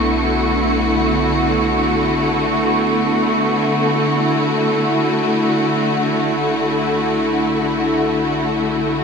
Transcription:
Already playing: analog synth bass B1, string section D3 A3 E4 F#4, synth drone B3, synth texture C#6
3.79 analog synth bass B1

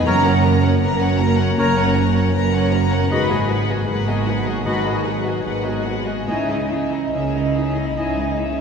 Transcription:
0.06 double bass section F#1, cello section F#2, harp F#2, felt piano F#2, viola section A#3, french horn section C#4 A#4, violin section A#4 A#5, clarinet A#4, oboe C#5, flute section A#5
0.24 felt piano A#3, viola section C#4, violin section C#5 F#5
0.44 harp A#3, viola section A#3, violin section A#4 A#5, felt piano A#4
0.62 viola section C#4, violin section C#5 F#5, felt piano C#5
0.80 double bass section F#1, cello section F#2, viola section A#3, harp B3, violin section A#4 A#5, felt piano B4
0.99 viola section C#4, violin section C#5 F#5, felt piano C#5
1.18 harp A#3, viola section A#3, violin section A#4 A#5, felt piano A#4
1.37 viola section C#4, violin section C#5 F#5
1.57 double bass section F#1, cello section F#2, felt piano C#3, harp C#3, viola section A#3, violin section A#4 A#5, clarinet A#4, oboe C#5, flute section A#5
1.77 felt piano A#3, viola section C#4, violin section C#5 F#5
1.95 viola section A#3, harp A#3, felt piano A#4, violin section A#4 A#5
2.15 viola section C#4, felt piano C#5, violin section C#5 F#5
2.33 double bass section F#1, cello section F#2, viola section A#3, harp B3, violin section A#4 A#5, felt piano B4
2.52 viola section C#4, violin section C#5 F#5, felt piano C#5
2.71 viola section A#3, harp A#3, violin section A#4 A#5, felt piano A#4
2.91 felt piano A#3, viola section C#4, violin section C#5 F#5
3.09 double bass section G#1, cello section G#2, felt piano G#2, harp G#2, french horn section B2 F#3, clarinet F#4, viola section G#4, violin section B4 F#5, oboe D#5, flute section B5
3.29 felt piano G#3, viola section F#4, violin section G#4 D#5
3.49 harp G#3, felt piano F#4, viola section G#4, violin section B4 F#5
3.69 viola section F#4, violin section G#4 D#5, felt piano B4
3.87 double bass section G#1, cello section G#2, harp A#3, viola section G#4, felt piano A#4, violin section B4 F#5
4.08 felt piano B3, viola section F#4, violin section G#4 D#5
4.26 harp G#3, felt piano F#4, viola section G#4, violin section B4 F#5
4.46 felt piano G#3, viola section F#4, violin section G#4 D#5
4.65 double bass section G#1, cello section G#2, felt piano D#3, harp D#3, clarinet F#4, viola section G#4, violin section B4 F#5, oboe D#5, flute section B5
4.85 felt piano G#3, viola section F#4, violin section G#4 D#5
5.04 harp G#3, felt piano F#4, viola section G#4, violin section B4 F#5
5.24 viola section F#4, violin section G#4 D#5, felt piano B4
5.44 double bass section G#1, cello section G#2, harp A#3, viola section G#4, felt piano A#4, violin section B4 F#5
5.64 felt piano B3, viola section F#4, violin section G#4 D#5
5.85 harp G#3, felt piano F#4, viola section G#4, violin section B4 F#5
6.06 felt piano G#3, viola section F#4, violin section G#4 D#5
6.26 felt piano C#2, double bass section C#2, harp C#3, cello section C#3, french horn section E3 D#5, viola section D#4, clarinet E4, violin section G#4 E5, oboe D#5, flute section G#5
6.49 felt piano G#3, violin section D#4 D#5, viola section E4
6.70 harp G#3, viola section D#4, felt piano E4, violin section G#4 E5
6.91 violin section D#4 D#5, viola section E4, felt piano D#5
7.13 double bass section C#2, cello section C#3, harp A#3, viola section D#4, violin section G#4 E5, felt piano C#5
7.34 violin section D#4 D#5, viola section E4, felt piano D#5
7.54 harp G#3, viola section D#4, felt piano E4, violin section G#4 E5
7.76 felt piano G#3, violin section D#4 D#5, viola section E4
7.96 double bass section C#2, felt piano G#2, cello section C#3, harp C#4, viola section D#4, clarinet E4, violin section G#4 E5, oboe D#5, flute section G#5
8.17 felt piano G#3, violin section D#4 D#5, viola section E4
8.38 harp G#3, viola section D#4, felt piano E4, violin section G#4 E5

